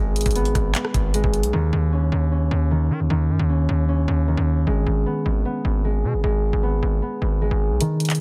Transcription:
0.00 0.25 G#1 loud
0.00 1.13 G#3 loud
0.00 0.35 B3 medium
0.00 0.51 C#4 medium
0.16 closed hi-hat medium
0.21 closed hi-hat medium
0.26 0.54 G#1 loud
0.26 kick medium
0.26 closed hi-hat medium
0.31 closed hi-hat medium
0.36 0.74 B3 medium
0.36 closed hi-hat medium
0.45 closed hi-hat soft
0.55 0.74 G#1 loud
0.55 kick medium
0.55 cross-stick medium
0.55 closed hi-hat medium
0.75 3.85 B3 medium
0.75 clap loud
0.75 closed hi-hat medium
0.85 cross-stick loud
0.94 1.23 G#1 loud
0.94 kick loud
0.94 closed hi-hat medium
1.14 1.58 G#3 medium
1.14 closed hi-hat medium
1.24 1.45 G#1 loud
1.24 kick medium
1.34 closed hi-hat soft
1.34 open hi-hat medium
1.43 1.53 B1 loud
1.43 closed hi-hat medium
1.53 1.72 D#2 loud
1.53 2.70 D#3 loud
1.73 2.10 D#2 loud
1.92 2.31 C#4 medium
2.12 2.50 D#2 loud
2.32 3.49 C#4 medium
2.51 2.92 D#2 loud
2.71 3.09 D#3 medium
2.90 3.02 D#3 loud
3.00 3.10 D#2 medium
3.10 3.31 D#2 loud
3.10 4.27 D#3 medium
3.30 3.39 F#2 medium
3.39 3.68 D#2 loud
3.49 3.88 C#4 medium
3.69 4.07 D#2 loud
3.89 6.78 C#4 medium
4.08 4.36 D#2 loud
4.28 4.72 D#3 medium
4.37 4.66 D#2 loud
4.67 4.86 G#1 loud
4.67 5.83 G#3 medium
4.87 5.05 G#1 loud
5.06 5.45 B3 medium
5.26 5.45 G#1 loud
5.45 6.63 B3 medium
5.65 6.06 G#1 loud
5.84 6.22 G#3 medium
6.04 6.15 B2 loud
6.14 6.23 G#1 loud
6.24 6.52 G#1 loud
6.24 7.40 G#3 medium
6.53 6.81 G#1 loud
6.63 7.02 B3 medium
6.83 7.01 G#1 loud
7.02 8.20 B3 medium
7.22 7.50 G#1 loud
7.41 7.86 G#3 medium
7.51 7.72 G#1 loud
7.71 7.80 B1 loud
7.81 8.20 D#3 loud
7.81 closed hi-hat medium
8.00 closed hi-hat medium
8.05 closed hi-hat medium
8.10 clap medium
8.10 closed hi-hat medium
8.15 closed hi-hat medium

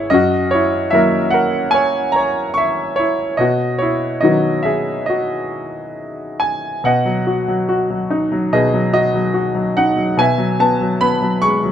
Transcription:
0.00 0.13 E4 medium
0.00 0.13 G#4 medium
0.00 0.13 B4 soft
0.00 0.12 C#5 medium
0.00 0.13 E5 medium
0.00 0.13 G#5 medium
0.10 3.35 F#2 medium
0.10 0.51 F#4 medium
0.10 0.53 D#5 medium
0.51 0.91 E4 soft
0.51 0.93 C#5 medium
0.91 3.35 F#3 soft
0.91 3.36 A#3 soft
0.91 2.98 E4 soft
0.91 1.31 A#4 medium
0.91 1.29 E5 medium
1.31 1.72 A#4 medium
1.31 1.70 F#5 medium
1.71 2.12 C#5 medium
1.71 2.15 G#5 medium
2.12 2.56 A#5 medium
2.16 2.54 C#5 medium
2.54 2.96 E5 medium
2.54 2.94 C#6 medium
2.96 3.37 E4 soft
2.96 3.40 C#5 medium
3.37 6.79 B2 medium
3.37 3.79 F#4 soft
3.37 3.81 D#5 medium
3.78 4.20 E4 soft
3.78 4.23 C#5 medium
4.21 6.80 D#3 soft
4.21 6.79 F#3 soft
4.21 6.80 B3 soft
4.21 4.63 F#4 soft
4.21 4.65 D#5 medium
4.63 5.04 G#4 soft
4.63 5.03 E5 medium
5.06 6.37 F#4 soft
5.06 6.35 D#5 medium
6.40 6.85 G#5 medium
6.84 8.51 B2 soft
6.84 8.51 D#5 medium
6.84 8.59 F#5 medium
7.05 7.47 F#3 soft
7.27 7.67 F#4 soft
7.48 7.89 F#3 soft
7.69 8.92 F#4 soft
7.90 8.30 F#3 soft
8.10 9.73 D#4 soft
8.32 8.72 F#3 soft
8.53 10.15 B2 medium
8.53 10.16 G#4 soft
8.53 8.92 D#5 medium
8.74 9.13 F#3 soft
8.93 9.32 F#4 soft
8.93 9.80 D#5 medium
9.15 9.53 F#3 soft
9.34 10.16 F#4 soft
9.55 9.95 F#3 soft
9.77 10.18 D#4 soft
9.77 10.16 F#5 medium
9.96 10.18 F#3 soft
10.17 11.72 B2 medium
10.17 11.72 E5 medium
10.17 10.58 G#5 medium
10.38 10.80 F#3 soft
10.60 11.00 B3 soft
10.60 11.03 A5 medium
10.81 11.21 F#3 soft
11.01 11.72 B3 medium
11.01 11.40 B5 medium
11.22 11.62 F#3 soft
11.42 11.72 G#3 soft
11.42 11.72 C#6 medium
11.63 11.72 F#3 soft

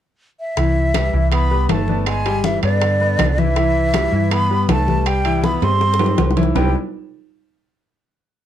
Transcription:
0.40 1.29 E5 medium
0.57 1.09 C2 medium
0.57 0.88 E3 medium
0.57 0.88 E4 medium
0.57 0.88 E5 medium
0.57 high bongo medium
0.57 high conga soft
0.57 high timbale medium
0.76 high conga soft
0.94 1.10 G3 medium
0.94 1.10 G4 medium
0.94 1.10 B4 medium
0.94 high bongo medium
0.94 high conga medium
0.94 high timbale medium
0.94 low timbale medium
1.13 1.65 C2 medium
1.13 1.44 E3 medium
1.13 1.44 E4 medium
1.13 1.44 E5 medium
1.13 high conga soft
1.32 1.67 B3 medium
1.32 1.67 B5 medium
1.32 high bongo medium
1.32 high conga soft
1.32 high timbale medium
1.50 1.82 G3 medium
1.50 1.82 G4 medium
1.50 1.82 B4 medium
1.50 high conga soft
1.69 2.57 G1 medium
1.69 2.04 A3 medium
1.69 2.05 A5 medium
1.69 high bongo medium
1.69 low bongo medium
1.69 high conga medium
1.69 high timbale medium
1.69 low timbale medium
1.88 2.19 B3 medium
1.88 2.19 B4 medium
1.88 2.19 D5 medium
1.88 high conga medium
2.06 2.46 G#3 medium
2.06 2.46 G#5 medium
2.06 high bongo medium
2.06 high conga soft
2.06 high timbale medium
2.25 2.56 G3 medium
2.25 2.56 G4 medium
2.25 2.57 G5 medium
2.25 high bongo soft
2.25 high conga soft
2.25 high timbale medium
2.44 2.63 E3 medium
2.44 2.63 E5 medium
2.44 high bongo medium
2.44 high conga medium
2.44 low timbale medium
2.63 3.15 G2 medium
2.63 3.40 D3 medium
2.63 2.94 B3 medium
2.63 2.94 B4 medium
2.63 3.40 D5 loud
2.63 2.94 D5 medium
2.63 high bongo soft
2.63 high conga soft
2.63 high timbale medium
2.82 high bongo medium
2.82 high conga soft
2.82 high timbale medium
3.00 3.31 B3 medium
3.00 3.32 B4 medium
3.00 3.32 D5 medium
3.00 high bongo soft
3.00 high conga soft
3.19 4.07 C2 medium
3.19 high bongo medium
3.19 low bongo medium
3.19 high conga medium
3.19 high timbale medium
3.19 low timbale medium
3.38 4.33 E3 medium
3.38 3.53 E3 medium
3.38 3.54 E4 medium
3.38 3.54 E5 medium
3.38 4.34 E5 loud
3.38 high conga medium
3.56 3.87 E3 medium
3.56 3.88 E4 medium
3.56 3.88 E5 medium
3.56 high bongo medium
3.56 high conga soft
3.56 high timbale medium
3.75 high conga soft
3.94 4.10 G3 medium
3.94 4.10 G4 medium
3.94 4.10 B4 medium
3.94 high bongo medium
3.94 high conga medium
3.94 high timbale medium
3.94 low timbale medium
4.12 4.65 G2 medium
4.12 4.44 E3 medium
4.12 4.44 E4 medium
4.12 4.44 E5 medium
4.12 high conga soft
4.31 4.69 B3 medium
4.31 4.69 B5 loud
4.31 high bongo medium
4.31 high conga soft
4.31 high timbale medium
4.50 4.81 G3 medium
4.50 4.81 G4 medium
4.50 4.81 B4 medium
4.50 high conga soft
4.69 5.56 C2 medium
4.69 5.08 A3 medium
4.69 5.08 A5 medium
4.69 high bongo medium
4.69 low bongo medium
4.69 high conga medium
4.69 high timbale medium
4.69 low timbale medium
4.88 5.18 G3 medium
4.88 5.18 G4 medium
4.88 5.19 B4 medium
4.88 high conga medium
5.06 5.46 G3 medium
5.06 5.45 G5 medium
5.06 high bongo medium
5.06 high conga soft
5.06 high timbale medium
5.25 5.56 E3 medium
5.25 5.56 E4 medium
5.25 5.56 E5 medium
5.25 high bongo soft
5.25 high conga soft
5.25 high timbale medium
5.43 5.64 B3 medium
5.43 5.65 B5 loud
5.43 high bongo medium
5.43 high conga medium
5.43 low timbale medium
5.62 6.14 G2 medium
5.62 5.93 G3 medium
5.62 6.37 C4 medium
5.62 5.93 G4 medium
5.62 5.93 C5 medium
5.62 6.38 C6 loud
5.62 high bongo soft
5.62 high conga soft
5.62 high timbale medium
5.80 high bongo medium
5.80 high conga soft
5.94 high bongo medium
5.99 6.30 G3 medium
5.99 6.30 G4 medium
5.99 6.31 C5 medium
5.99 high conga soft
5.99 low timbale loud
6.06 low bongo medium
6.18 6.51 C2 medium
6.18 low bongo medium
6.18 high conga medium
6.18 low timbale medium
6.30 low bongo medium
6.36 6.52 E3 medium
6.36 6.52 E4 medium
6.36 6.52 E5 medium
6.36 high conga medium
6.36 low timbale medium
6.43 low bongo medium
6.55 6.73 C2 medium
6.55 6.73 C3 medium
6.55 6.73 G3 medium
6.55 6.73 B3 medium
6.55 6.73 C4 medium
6.55 6.73 D4 medium
6.55 6.73 E4 medium
6.55 6.73 G5 medium
6.55 low bongo medium
6.55 low conga medium
6.55 low timbale medium

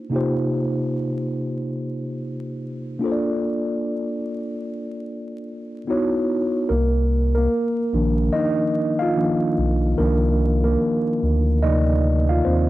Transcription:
0.10 2.94 C3 medium
0.10 2.95 A#3 medium
0.10 2.95 D#4 medium
0.10 2.96 F4 medium
0.15 2.97 G4 medium
0.15 2.97 C5 medium
2.99 5.83 A#3 medium
2.99 5.84 D4 medium
2.99 5.84 F4 medium
3.04 5.85 A4 medium
3.04 3.10 C5 medium
3.12 5.89 D5 medium
5.87 6.69 B3 medium
5.87 6.70 D#4 medium
5.87 6.70 E4 medium
5.87 6.71 F#4 medium
5.87 6.71 C#5 medium
6.69 7.48 C2 loud
6.69 7.32 A#3 medium
6.69 7.31 A#4 medium
7.35 7.93 A#3 medium
7.35 8.36 A#4 medium
7.93 8.30 A#1 loud
7.93 8.51 D#3 medium
7.93 8.51 F3 medium
7.93 8.51 A#3 medium
7.93 8.52 D4 medium
8.33 8.97 D#4 medium
8.33 9.01 D#5 loud
8.99 9.54 F4 medium
8.99 9.52 F5 medium
9.16 9.53 D#3 soft
9.16 9.53 F3 soft
9.16 9.53 A#3 soft
9.16 9.53 D4 medium
9.58 9.95 B1 loud
9.98 10.77 C2 loud
9.98 10.56 D#3 soft
9.98 10.56 F3 soft
9.98 10.61 A#3 medium
9.98 10.57 D4 medium
9.98 10.60 A#4 medium
10.64 11.59 A#3 medium
10.64 11.65 A#4 medium
11.23 12.41 D2 loud
11.63 12.00 C3 soft
11.63 12.00 F3 soft
11.63 12.00 A#3 soft
11.63 12.25 D#4 medium
11.63 12.00 D5 medium
11.63 12.31 D#5 loud
12.29 12.44 F4 medium
12.29 12.45 F5 medium
12.45 12.70 D#2 medium
12.45 12.70 C4 medium
12.45 12.70 C5 medium

